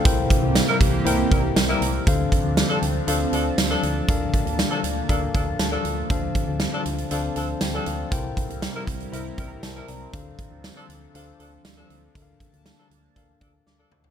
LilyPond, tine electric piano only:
\new Staff \with { instrumentName = "Tine electric piano" } { \time 4/4 \key d \minor \tempo 4 = 119 << { <a' f''>8 r2. r8 | r1 | r2 r8 f''8 a''4 | r2 r8 <c'' a''>8 g''8 <a' f''>8~ |
<a' f''>8 r2 <bes' g''>8 <c'' a''>8 <d'' bes''>8~ | <d'' bes''>8 r2. r8 | r2. <f'' d'''>8 <c'' a''>8 | } \\ { <c e' bes' c'' g''>4. r8 <e' bes' c'' g''>4. r8 | <d d' a' c'' f''>4. r8 <d' a' c'' f''>4. r8 | <d d' a' bes' f''>4. r8 <d' a' bes' f''>4. r8 | <d d' a' c'' f''>4. r8 <d' a' c'' f''>4. r8 |
<c e' bes' c'' g''>4. r8 <e' bes' c'' e''>4. r8 | <d d' a' c'' f''>4. r8 <d' a' c'' f''>4. r8 | <d d' a' bes' e'' f''>4. r8 <d' a' bes' f''>4. r8 | } >> }